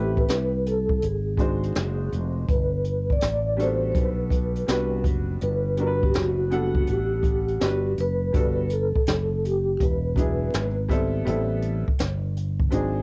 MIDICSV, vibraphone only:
0, 0, Header, 1, 2, 480
1, 0, Start_track
1, 0, Key_signature, 1, "major"
1, 0, Tempo, 731707
1, 1631, Time_signature, 4, 2, 24, 8
1, 8543, End_track
2, 0, Start_track
2, 0, Title_t, "Vibraphone"
2, 0, Program_c, 0, 11
2, 0, Note_on_c, 0, 67, 73
2, 118, Note_on_c, 0, 71, 99
2, 125, Note_off_c, 0, 67, 0
2, 441, Note_on_c, 0, 69, 87
2, 445, Note_off_c, 0, 71, 0
2, 682, Note_on_c, 0, 68, 76
2, 683, Note_off_c, 0, 69, 0
2, 1370, Note_off_c, 0, 68, 0
2, 1639, Note_on_c, 0, 71, 87
2, 2044, Note_off_c, 0, 71, 0
2, 2050, Note_on_c, 0, 74, 101
2, 2371, Note_off_c, 0, 74, 0
2, 2372, Note_on_c, 0, 72, 86
2, 2564, Note_off_c, 0, 72, 0
2, 2572, Note_on_c, 0, 72, 59
2, 2597, Note_off_c, 0, 72, 0
2, 2609, Note_on_c, 0, 71, 81
2, 3294, Note_off_c, 0, 71, 0
2, 3563, Note_on_c, 0, 71, 89
2, 3960, Note_on_c, 0, 67, 75
2, 3966, Note_off_c, 0, 71, 0
2, 4039, Note_off_c, 0, 67, 0
2, 4040, Note_on_c, 0, 66, 85
2, 4525, Note_on_c, 0, 67, 81
2, 4530, Note_off_c, 0, 66, 0
2, 5212, Note_off_c, 0, 67, 0
2, 5252, Note_on_c, 0, 71, 107
2, 5688, Note_off_c, 0, 71, 0
2, 5696, Note_on_c, 0, 71, 74
2, 5719, Note_off_c, 0, 71, 0
2, 5722, Note_on_c, 0, 69, 91
2, 6203, Note_on_c, 0, 67, 87
2, 6210, Note_off_c, 0, 69, 0
2, 6444, Note_off_c, 0, 67, 0
2, 6446, Note_on_c, 0, 71, 87
2, 7132, Note_off_c, 0, 71, 0
2, 8543, End_track
0, 0, End_of_file